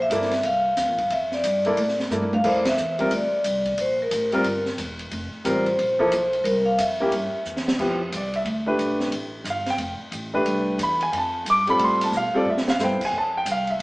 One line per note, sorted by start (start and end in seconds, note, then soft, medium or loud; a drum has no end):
0.02 0.47 E5 loud
0.10 0.42 G1 medium
0.10 0.30 A#3 medium
0.10 0.30 E4 medium
0.10 0.30 A4 medium
0.10 0.30 D5 medium
0.10 hi-hat pedal medium
0.10 ride medium
0.22 snare soft
0.31 snare soft
0.31 ride soft
0.43 0.76 C2 medium
0.43 1.13 F5 loud
0.43 ride medium
0.77 0.88 D2 medium
0.77 snare soft
0.77 hi-hat pedal medium
0.77 ride medium
0.88 0.98 A#1 medium
0.98 1.09 G1 medium
0.98 kick medium
0.98 ride soft
1.10 1.42 F2 medium
1.10 1.31 E5 medium
1.10 ride medium
1.32 1.95 D5 medium
1.32 snare soft
1.43 1.76 G2 medium
1.43 hi-hat pedal medium
1.43 ride medium
1.65 1.76 A#3 medium
1.65 1.76 E4 medium
1.65 1.76 A4 medium
1.65 1.77 D5 medium
1.65 ride soft
1.76 2.09 A2 medium
1.76 ride medium
1.88 snare soft
2.00 snare soft
2.10 2.43 G2 medium
2.10 2.30 A#3 medium
2.10 2.30 E4 medium
2.10 2.30 A4 soft
2.10 2.31 D5 medium
2.10 hi-hat pedal medium
2.10 high tom soft
2.22 high tom medium
2.33 2.44 F5 medium
2.33 high tom medium
2.44 2.76 F2 medium
2.44 2.63 A#3 medium
2.44 2.63 E4 medium
2.44 2.64 A4 medium
2.44 2.67 C5 medium
2.44 2.64 D5 medium
2.44 kick medium
2.44 crash medium
2.65 3.09 E5 loud
2.65 snare medium
2.65 ride medium
2.78 3.10 E2 medium
2.78 hi-hat pedal medium
2.99 3.09 G3 medium
2.99 3.10 C4 medium
2.99 3.10 F4 medium
2.99 3.10 A#4 medium
2.99 ride soft
3.11 3.30 D2 medium
3.11 3.81 D5 loud
3.11 ride medium
3.32 muted upright bass stroke soft
3.44 3.77 C2 medium
3.44 hi-hat pedal soft
3.44 ride medium
3.65 kick medium
3.65 ride soft
3.78 4.10 A#1 medium
3.78 3.89 C5 medium
3.78 ride medium
4.02 4.63 A#4 medium
4.11 4.43 A1 medium
4.11 hi-hat pedal medium
4.11 ride medium
4.32 4.43 G3 medium
4.32 4.44 C4 medium
4.32 4.44 F4 medium
4.32 4.44 A#4 medium
4.32 ride soft
4.44 4.77 G1 medium
4.44 ride medium
4.66 snare soft
4.78 5.10 E1 medium
4.78 hi-hat pedal medium
4.78 ride medium
4.99 ride soft
5.11 5.31 F1 medium
5.11 ride medium
5.34 muted upright bass stroke soft
5.45 5.77 A1 medium
5.45 5.64 G3 medium
5.45 5.64 C4 medium
5.45 5.64 F4 medium
5.45 5.64 A#4 medium
5.45 5.56 C5 medium
5.45 hi-hat pedal medium
5.45 ride medium
5.66 6.48 C5 medium
5.66 ride soft
5.79 6.11 A#1 medium
5.79 ride medium
5.99 6.10 F3 medium
5.99 6.10 A#3 medium
5.99 6.10 E4 medium
5.99 6.11 A4 medium
5.99 kick medium
6.11 6.44 B1 medium
6.11 hi-hat pedal medium
6.11 ride medium
6.33 ride soft
6.44 6.77 C2 medium
6.44 6.66 A#4 medium
6.44 ride medium
6.65 6.77 F5 loud
6.78 7.11 F2 medium
6.78 7.41 E5 medium
6.78 hi-hat pedal medium
6.78 ride medium
7.00 7.11 A#3 medium
7.00 7.11 C#4 medium
7.00 7.11 E4 medium
7.00 7.12 G4 medium
7.11 7.31 G2 medium
7.11 ride medium
7.33 muted upright bass stroke soft
7.45 7.78 E2 medium
7.45 hi-hat pedal medium
7.57 snare medium
7.68 snare medium
7.78 8.11 F2 medium
7.78 7.98 F3 medium
7.78 7.98 B3 soft
7.78 7.98 E4 medium
7.78 7.98 G4 medium
7.78 kick medium
7.78 crash medium
8.12 8.44 C2 medium
8.12 hi-hat pedal medium
8.12 ride medium
8.16 8.35 D5 medium
8.34 8.46 E5 medium
8.34 ride soft
8.45 8.78 D2 medium
8.45 ride soft
8.66 9.10 A3 medium
8.66 9.10 D4 medium
8.66 9.10 G4 medium
8.66 9.10 B4 medium
8.78 9.11 B1 medium
8.78 hi-hat pedal soft
8.78 ride soft
9.00 snare soft
9.12 9.44 A1 medium
9.12 ride medium
9.44 9.77 G1 medium
9.44 hi-hat pedal medium
9.44 ride medium
9.50 9.69 F5 medium
9.66 9.76 G5 medium
9.66 snare soft
9.66 ride soft
9.78 9.98 F1 medium
9.78 ride medium
9.99 muted upright bass stroke soft
10.11 10.44 A1 medium
10.11 hi-hat pedal soft
10.11 ride medium
10.34 10.77 A3 medium
10.34 10.77 D4 medium
10.34 10.77 G4 medium
10.34 10.77 B4 medium
10.45 10.78 C2 medium
10.45 ride medium
10.67 kick soft
10.78 11.11 E2 medium
10.78 hi-hat pedal medium
10.78 ride medium
10.83 11.02 B5 medium
11.01 11.11 G#5 medium
11.01 ride soft
11.13 11.45 F2 medium
11.13 11.15 G#5 medium
11.13 ride medium
11.18 11.46 A5 medium
11.45 11.78 G2 medium
11.45 hi-hat pedal soft
11.45 ride medium
11.50 11.69 D6 loud
11.67 12.10 G3 medium
11.67 12.11 C4 soft
11.67 12.11 F4 soft
11.67 12.11 A4 medium
11.67 11.81 B5 medium
11.67 ride soft
11.78 12.11 A2 medium
11.78 ride medium
11.84 12.03 C6 medium
12.01 12.14 A5 medium
12.01 ride medium
12.12 12.32 B2 medium
12.12 hi-hat pedal medium
12.17 12.36 F5 medium
12.34 12.45 G3 medium
12.34 12.45 C4 medium
12.34 12.45 F4 medium
12.34 12.46 A4 medium
12.34 12.47 D5 medium
12.34 muted upright bass stroke soft
12.45 12.78 A2 medium
12.50 12.69 E5 medium
12.58 snare medium
12.68 12.81 F5 medium
12.68 snare medium
12.78 12.99 G2 medium
12.78 12.99 B3 soft
12.78 12.99 E4 soft
12.78 12.99 A4 soft
12.78 13.00 C5 medium
12.78 snare soft
12.78 hi-hat pedal medium
12.84 13.03 G5 medium
13.01 kick medium
13.01 crash medium
13.05 13.15 G#5 medium
13.12 13.45 F2 medium
13.18 13.36 A5 medium
13.37 13.48 G5 medium
13.45 13.78 C2 medium
13.45 hi-hat pedal medium
13.45 ride medium
13.52 13.70 F5 medium
13.67 13.81 E5 medium
13.67 ride soft
13.79 13.82 A1 medium